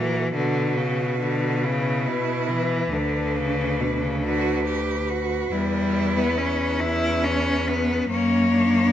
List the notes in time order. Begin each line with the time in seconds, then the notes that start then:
Already playing: A#2 E3 F#4 A#4
0.33 B2 D3 F#4 B4
0.77 C#3
1.20 D3
1.64 C#3 E4
2.07 B2
2.50 E3
2.92 D2 D3 D4 B4
3.36 C#3
3.80 B2
4.02 C#3
4.23 D3 F#4 B4
4.67 G4
5.10 F#4
5.52 E2 G3 E4
6.17 B3
6.38 C#4
6.80 C#4 E4
7.24 C#4
7.68 B3
8.10 F#2 A#3 C#4 C#5
8.51 D4